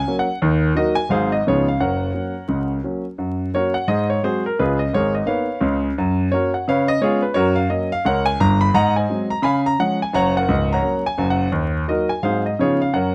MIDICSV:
0, 0, Header, 1, 2, 480
1, 0, Start_track
1, 0, Key_signature, 6, "major"
1, 0, Tempo, 348028
1, 549, Time_signature, 4, 2, 24, 8
1, 18135, End_track
2, 0, Start_track
2, 0, Title_t, "Grand piano"
2, 0, Program_c, 0, 0
2, 0, Note_on_c, 0, 80, 102
2, 104, Note_on_c, 0, 54, 54
2, 104, Note_on_c, 0, 58, 58
2, 108, Note_on_c, 0, 61, 56
2, 200, Note_off_c, 0, 80, 0
2, 264, Note_on_c, 0, 78, 90
2, 358, Note_off_c, 0, 58, 0
2, 359, Note_off_c, 0, 54, 0
2, 361, Note_off_c, 0, 61, 0
2, 521, Note_off_c, 0, 78, 0
2, 576, Note_on_c, 0, 39, 88
2, 581, Note_on_c, 0, 51, 81
2, 972, Note_off_c, 0, 39, 0
2, 976, Note_off_c, 0, 51, 0
2, 1037, Note_on_c, 0, 54, 51
2, 1046, Note_on_c, 0, 63, 55
2, 1047, Note_on_c, 0, 58, 48
2, 1057, Note_on_c, 0, 75, 87
2, 1067, Note_on_c, 0, 70, 60
2, 1074, Note_on_c, 0, 66, 73
2, 1298, Note_off_c, 0, 75, 0
2, 1299, Note_off_c, 0, 54, 0
2, 1305, Note_off_c, 0, 63, 0
2, 1306, Note_off_c, 0, 58, 0
2, 1316, Note_on_c, 0, 80, 102
2, 1326, Note_off_c, 0, 70, 0
2, 1330, Note_off_c, 0, 66, 0
2, 1475, Note_off_c, 0, 80, 0
2, 1507, Note_on_c, 0, 32, 67
2, 1517, Note_on_c, 0, 54, 41
2, 1522, Note_on_c, 0, 44, 82
2, 1529, Note_on_c, 0, 77, 89
2, 1531, Note_on_c, 0, 60, 42
2, 1537, Note_on_c, 0, 63, 45
2, 1540, Note_on_c, 0, 68, 75
2, 1540, Note_on_c, 0, 72, 85
2, 1774, Note_off_c, 0, 77, 0
2, 1779, Note_off_c, 0, 54, 0
2, 1789, Note_off_c, 0, 60, 0
2, 1793, Note_off_c, 0, 63, 0
2, 1802, Note_off_c, 0, 68, 0
2, 1802, Note_off_c, 0, 72, 0
2, 1823, Note_on_c, 0, 75, 81
2, 1916, Note_off_c, 0, 32, 0
2, 1924, Note_off_c, 0, 44, 0
2, 1971, Note_off_c, 0, 75, 0
2, 2025, Note_on_c, 0, 49, 77
2, 2026, Note_on_c, 0, 53, 43
2, 2030, Note_on_c, 0, 37, 65
2, 2033, Note_on_c, 0, 59, 53
2, 2041, Note_on_c, 0, 73, 90
2, 2046, Note_on_c, 0, 63, 49
2, 2046, Note_on_c, 0, 68, 64
2, 2048, Note_on_c, 0, 65, 63
2, 2272, Note_off_c, 0, 73, 0
2, 2280, Note_off_c, 0, 53, 0
2, 2285, Note_off_c, 0, 59, 0
2, 2294, Note_off_c, 0, 63, 0
2, 2297, Note_off_c, 0, 65, 0
2, 2297, Note_off_c, 0, 68, 0
2, 2321, Note_on_c, 0, 77, 83
2, 2417, Note_off_c, 0, 49, 0
2, 2420, Note_off_c, 0, 37, 0
2, 2461, Note_off_c, 0, 77, 0
2, 2484, Note_on_c, 0, 42, 63
2, 2486, Note_on_c, 0, 30, 57
2, 2488, Note_on_c, 0, 78, 81
2, 2491, Note_on_c, 0, 73, 61
2, 2502, Note_on_c, 0, 70, 61
2, 2885, Note_off_c, 0, 42, 0
2, 2887, Note_off_c, 0, 30, 0
2, 2953, Note_on_c, 0, 54, 35
2, 2953, Note_on_c, 0, 58, 41
2, 2957, Note_on_c, 0, 61, 38
2, 3216, Note_off_c, 0, 54, 0
2, 3216, Note_off_c, 0, 58, 0
2, 3219, Note_off_c, 0, 61, 0
2, 3426, Note_on_c, 0, 37, 57
2, 3430, Note_on_c, 0, 49, 61
2, 3703, Note_off_c, 0, 78, 0
2, 3835, Note_off_c, 0, 37, 0
2, 3837, Note_off_c, 0, 49, 0
2, 3864, Note_off_c, 0, 73, 0
2, 3870, Note_off_c, 0, 70, 0
2, 3921, Note_on_c, 0, 54, 47
2, 3929, Note_on_c, 0, 58, 34
2, 3933, Note_on_c, 0, 61, 47
2, 4182, Note_off_c, 0, 54, 0
2, 4188, Note_off_c, 0, 58, 0
2, 4190, Note_off_c, 0, 61, 0
2, 4390, Note_on_c, 0, 42, 66
2, 4798, Note_off_c, 0, 42, 0
2, 4879, Note_on_c, 0, 54, 41
2, 4889, Note_on_c, 0, 73, 91
2, 4890, Note_on_c, 0, 58, 45
2, 4897, Note_on_c, 0, 70, 59
2, 4899, Note_on_c, 0, 61, 47
2, 4906, Note_on_c, 0, 66, 65
2, 5134, Note_off_c, 0, 73, 0
2, 5140, Note_off_c, 0, 54, 0
2, 5148, Note_off_c, 0, 58, 0
2, 5155, Note_off_c, 0, 61, 0
2, 5159, Note_on_c, 0, 78, 89
2, 5161, Note_off_c, 0, 70, 0
2, 5166, Note_off_c, 0, 66, 0
2, 5317, Note_off_c, 0, 78, 0
2, 5346, Note_on_c, 0, 44, 77
2, 5350, Note_on_c, 0, 75, 88
2, 5364, Note_on_c, 0, 72, 63
2, 5369, Note_on_c, 0, 68, 61
2, 5603, Note_off_c, 0, 75, 0
2, 5634, Note_off_c, 0, 72, 0
2, 5637, Note_off_c, 0, 68, 0
2, 5652, Note_on_c, 0, 73, 88
2, 5755, Note_off_c, 0, 44, 0
2, 5805, Note_off_c, 0, 73, 0
2, 5836, Note_on_c, 0, 54, 45
2, 5839, Note_on_c, 0, 56, 41
2, 5845, Note_on_c, 0, 60, 52
2, 5849, Note_on_c, 0, 72, 92
2, 5850, Note_on_c, 0, 68, 73
2, 5863, Note_on_c, 0, 66, 63
2, 6094, Note_off_c, 0, 72, 0
2, 6099, Note_off_c, 0, 54, 0
2, 6100, Note_off_c, 0, 56, 0
2, 6105, Note_off_c, 0, 60, 0
2, 6118, Note_off_c, 0, 68, 0
2, 6124, Note_off_c, 0, 66, 0
2, 6152, Note_on_c, 0, 70, 78
2, 6297, Note_off_c, 0, 70, 0
2, 6334, Note_on_c, 0, 49, 67
2, 6337, Note_on_c, 0, 71, 87
2, 6339, Note_on_c, 0, 37, 71
2, 6359, Note_on_c, 0, 68, 70
2, 6360, Note_on_c, 0, 65, 64
2, 6579, Note_off_c, 0, 71, 0
2, 6609, Note_on_c, 0, 75, 77
2, 6613, Note_off_c, 0, 68, 0
2, 6614, Note_off_c, 0, 65, 0
2, 6708, Note_off_c, 0, 49, 0
2, 6711, Note_off_c, 0, 37, 0
2, 6763, Note_off_c, 0, 75, 0
2, 6803, Note_on_c, 0, 32, 67
2, 6814, Note_on_c, 0, 44, 65
2, 6818, Note_on_c, 0, 73, 94
2, 6829, Note_on_c, 0, 68, 63
2, 6834, Note_on_c, 0, 70, 68
2, 7059, Note_off_c, 0, 73, 0
2, 7088, Note_off_c, 0, 68, 0
2, 7091, Note_off_c, 0, 70, 0
2, 7096, Note_on_c, 0, 75, 71
2, 7182, Note_off_c, 0, 32, 0
2, 7189, Note_off_c, 0, 44, 0
2, 7247, Note_off_c, 0, 75, 0
2, 7252, Note_on_c, 0, 58, 48
2, 7258, Note_on_c, 0, 63, 43
2, 7264, Note_on_c, 0, 59, 47
2, 7265, Note_on_c, 0, 77, 86
2, 7284, Note_on_c, 0, 71, 61
2, 7285, Note_on_c, 0, 73, 61
2, 7521, Note_off_c, 0, 58, 0
2, 7526, Note_off_c, 0, 63, 0
2, 7530, Note_off_c, 0, 59, 0
2, 7732, Note_on_c, 0, 37, 81
2, 7752, Note_on_c, 0, 49, 74
2, 7929, Note_off_c, 0, 77, 0
2, 8001, Note_off_c, 0, 71, 0
2, 8002, Note_off_c, 0, 73, 0
2, 8124, Note_off_c, 0, 37, 0
2, 8136, Note_off_c, 0, 49, 0
2, 8249, Note_on_c, 0, 42, 81
2, 8650, Note_off_c, 0, 42, 0
2, 8708, Note_on_c, 0, 58, 44
2, 8712, Note_on_c, 0, 73, 85
2, 8717, Note_on_c, 0, 61, 52
2, 8742, Note_on_c, 0, 66, 65
2, 8745, Note_on_c, 0, 70, 64
2, 8965, Note_off_c, 0, 73, 0
2, 8973, Note_off_c, 0, 58, 0
2, 8979, Note_off_c, 0, 61, 0
2, 9005, Note_off_c, 0, 66, 0
2, 9007, Note_off_c, 0, 70, 0
2, 9021, Note_on_c, 0, 78, 72
2, 9171, Note_off_c, 0, 78, 0
2, 9209, Note_on_c, 0, 49, 79
2, 9222, Note_on_c, 0, 77, 100
2, 9223, Note_on_c, 0, 71, 70
2, 9231, Note_on_c, 0, 73, 77
2, 9462, Note_off_c, 0, 77, 0
2, 9486, Note_off_c, 0, 71, 0
2, 9490, Note_off_c, 0, 73, 0
2, 9492, Note_on_c, 0, 75, 108
2, 9610, Note_off_c, 0, 49, 0
2, 9646, Note_off_c, 0, 75, 0
2, 9669, Note_on_c, 0, 59, 51
2, 9673, Note_on_c, 0, 56, 59
2, 9677, Note_on_c, 0, 73, 89
2, 9681, Note_on_c, 0, 61, 60
2, 9698, Note_on_c, 0, 68, 82
2, 9702, Note_on_c, 0, 65, 84
2, 9928, Note_off_c, 0, 73, 0
2, 9934, Note_off_c, 0, 59, 0
2, 9937, Note_off_c, 0, 56, 0
2, 9942, Note_off_c, 0, 61, 0
2, 9962, Note_on_c, 0, 71, 78
2, 9963, Note_off_c, 0, 68, 0
2, 9965, Note_off_c, 0, 65, 0
2, 10120, Note_off_c, 0, 71, 0
2, 10126, Note_on_c, 0, 73, 104
2, 10139, Note_on_c, 0, 42, 88
2, 10148, Note_on_c, 0, 70, 83
2, 10152, Note_on_c, 0, 66, 80
2, 10391, Note_off_c, 0, 73, 0
2, 10422, Note_on_c, 0, 77, 90
2, 10427, Note_off_c, 0, 70, 0
2, 10429, Note_off_c, 0, 66, 0
2, 10552, Note_off_c, 0, 42, 0
2, 10589, Note_off_c, 0, 77, 0
2, 10611, Note_on_c, 0, 58, 47
2, 10617, Note_on_c, 0, 54, 54
2, 10618, Note_on_c, 0, 75, 77
2, 10623, Note_on_c, 0, 61, 50
2, 10877, Note_off_c, 0, 75, 0
2, 10881, Note_off_c, 0, 58, 0
2, 10886, Note_off_c, 0, 54, 0
2, 10889, Note_off_c, 0, 61, 0
2, 10927, Note_on_c, 0, 77, 101
2, 11083, Note_off_c, 0, 77, 0
2, 11104, Note_on_c, 0, 37, 74
2, 11120, Note_on_c, 0, 78, 98
2, 11133, Note_on_c, 0, 70, 78
2, 11140, Note_on_c, 0, 73, 69
2, 11370, Note_off_c, 0, 78, 0
2, 11387, Note_on_c, 0, 80, 110
2, 11401, Note_off_c, 0, 70, 0
2, 11404, Note_off_c, 0, 73, 0
2, 11516, Note_off_c, 0, 37, 0
2, 11552, Note_off_c, 0, 80, 0
2, 11587, Note_on_c, 0, 31, 86
2, 11591, Note_on_c, 0, 82, 111
2, 11593, Note_on_c, 0, 43, 77
2, 11845, Note_off_c, 0, 82, 0
2, 11872, Note_on_c, 0, 83, 99
2, 11974, Note_off_c, 0, 31, 0
2, 11977, Note_off_c, 0, 43, 0
2, 12034, Note_off_c, 0, 83, 0
2, 12055, Note_on_c, 0, 44, 90
2, 12061, Note_on_c, 0, 82, 114
2, 12064, Note_on_c, 0, 75, 87
2, 12074, Note_on_c, 0, 78, 94
2, 12319, Note_off_c, 0, 82, 0
2, 12345, Note_off_c, 0, 75, 0
2, 12351, Note_off_c, 0, 78, 0
2, 12360, Note_on_c, 0, 80, 77
2, 12370, Note_on_c, 0, 75, 58
2, 12373, Note_on_c, 0, 72, 57
2, 12471, Note_off_c, 0, 44, 0
2, 12546, Note_on_c, 0, 54, 51
2, 12558, Note_on_c, 0, 56, 46
2, 12563, Note_on_c, 0, 60, 52
2, 12773, Note_off_c, 0, 80, 0
2, 12812, Note_off_c, 0, 54, 0
2, 12817, Note_off_c, 0, 75, 0
2, 12818, Note_off_c, 0, 72, 0
2, 12820, Note_off_c, 0, 56, 0
2, 12824, Note_off_c, 0, 60, 0
2, 12832, Note_on_c, 0, 82, 93
2, 12995, Note_off_c, 0, 82, 0
2, 12996, Note_on_c, 0, 49, 81
2, 13006, Note_on_c, 0, 83, 96
2, 13024, Note_on_c, 0, 80, 77
2, 13035, Note_on_c, 0, 77, 84
2, 13271, Note_off_c, 0, 83, 0
2, 13305, Note_off_c, 0, 80, 0
2, 13311, Note_off_c, 0, 77, 0
2, 13327, Note_on_c, 0, 82, 95
2, 13419, Note_off_c, 0, 49, 0
2, 13483, Note_off_c, 0, 82, 0
2, 13504, Note_on_c, 0, 53, 47
2, 13513, Note_on_c, 0, 56, 50
2, 13513, Note_on_c, 0, 61, 57
2, 13516, Note_on_c, 0, 78, 97
2, 13768, Note_off_c, 0, 78, 0
2, 13770, Note_off_c, 0, 53, 0
2, 13777, Note_off_c, 0, 56, 0
2, 13777, Note_off_c, 0, 61, 0
2, 13824, Note_on_c, 0, 80, 85
2, 13973, Note_off_c, 0, 80, 0
2, 13973, Note_on_c, 0, 42, 73
2, 13989, Note_on_c, 0, 30, 77
2, 13991, Note_on_c, 0, 82, 101
2, 14002, Note_on_c, 0, 78, 87
2, 14007, Note_on_c, 0, 73, 89
2, 14245, Note_off_c, 0, 82, 0
2, 14275, Note_off_c, 0, 78, 0
2, 14278, Note_off_c, 0, 73, 0
2, 14302, Note_on_c, 0, 78, 93
2, 14319, Note_on_c, 0, 73, 52
2, 14325, Note_on_c, 0, 70, 60
2, 14365, Note_off_c, 0, 42, 0
2, 14375, Note_off_c, 0, 30, 0
2, 14459, Note_on_c, 0, 37, 84
2, 14471, Note_on_c, 0, 25, 69
2, 14724, Note_off_c, 0, 78, 0
2, 14773, Note_off_c, 0, 73, 0
2, 14776, Note_off_c, 0, 70, 0
2, 14791, Note_on_c, 0, 82, 90
2, 14810, Note_on_c, 0, 78, 67
2, 14812, Note_on_c, 0, 73, 72
2, 14849, Note_off_c, 0, 37, 0
2, 14856, Note_off_c, 0, 25, 0
2, 14928, Note_on_c, 0, 54, 44
2, 14930, Note_on_c, 0, 58, 47
2, 14930, Note_on_c, 0, 61, 45
2, 15199, Note_off_c, 0, 54, 0
2, 15200, Note_off_c, 0, 58, 0
2, 15200, Note_off_c, 0, 61, 0
2, 15200, Note_off_c, 0, 82, 0
2, 15248, Note_off_c, 0, 78, 0
2, 15250, Note_off_c, 0, 73, 0
2, 15259, Note_on_c, 0, 80, 95
2, 15417, Note_on_c, 0, 30, 75
2, 15420, Note_on_c, 0, 42, 88
2, 15537, Note_off_c, 0, 80, 0
2, 15590, Note_on_c, 0, 78, 89
2, 15807, Note_off_c, 0, 30, 0
2, 15809, Note_off_c, 0, 42, 0
2, 15863, Note_off_c, 0, 78, 0
2, 15888, Note_on_c, 0, 39, 83
2, 16306, Note_off_c, 0, 39, 0
2, 16383, Note_on_c, 0, 58, 44
2, 16384, Note_on_c, 0, 54, 48
2, 16396, Note_on_c, 0, 75, 77
2, 16402, Note_on_c, 0, 63, 42
2, 16405, Note_on_c, 0, 66, 57
2, 16418, Note_on_c, 0, 70, 65
2, 16648, Note_off_c, 0, 75, 0
2, 16649, Note_off_c, 0, 58, 0
2, 16651, Note_off_c, 0, 54, 0
2, 16663, Note_off_c, 0, 63, 0
2, 16676, Note_off_c, 0, 66, 0
2, 16679, Note_on_c, 0, 80, 80
2, 16683, Note_off_c, 0, 70, 0
2, 16839, Note_off_c, 0, 80, 0
2, 16863, Note_on_c, 0, 44, 66
2, 16867, Note_on_c, 0, 77, 91
2, 16876, Note_on_c, 0, 54, 41
2, 16881, Note_on_c, 0, 60, 35
2, 16886, Note_on_c, 0, 63, 42
2, 16886, Note_on_c, 0, 68, 66
2, 16889, Note_on_c, 0, 72, 82
2, 17123, Note_off_c, 0, 77, 0
2, 17139, Note_off_c, 0, 54, 0
2, 17143, Note_off_c, 0, 60, 0
2, 17146, Note_off_c, 0, 63, 0
2, 17157, Note_off_c, 0, 68, 0
2, 17159, Note_off_c, 0, 72, 0
2, 17183, Note_on_c, 0, 75, 69
2, 17275, Note_off_c, 0, 44, 0
2, 17333, Note_off_c, 0, 75, 0
2, 17367, Note_on_c, 0, 49, 81
2, 17367, Note_on_c, 0, 53, 44
2, 17375, Note_on_c, 0, 63, 54
2, 17382, Note_on_c, 0, 59, 39
2, 17387, Note_on_c, 0, 73, 88
2, 17394, Note_on_c, 0, 68, 68
2, 17400, Note_on_c, 0, 65, 65
2, 17626, Note_off_c, 0, 73, 0
2, 17627, Note_off_c, 0, 53, 0
2, 17633, Note_off_c, 0, 63, 0
2, 17638, Note_off_c, 0, 59, 0
2, 17652, Note_off_c, 0, 68, 0
2, 17655, Note_off_c, 0, 65, 0
2, 17676, Note_on_c, 0, 77, 87
2, 17769, Note_off_c, 0, 49, 0
2, 17820, Note_off_c, 0, 77, 0
2, 17837, Note_on_c, 0, 42, 72
2, 17842, Note_on_c, 0, 78, 82
2, 17868, Note_on_c, 0, 73, 60
2, 17871, Note_on_c, 0, 70, 61
2, 18135, Note_off_c, 0, 42, 0
2, 18135, Note_off_c, 0, 70, 0
2, 18135, Note_off_c, 0, 73, 0
2, 18135, Note_off_c, 0, 78, 0
2, 18135, End_track
0, 0, End_of_file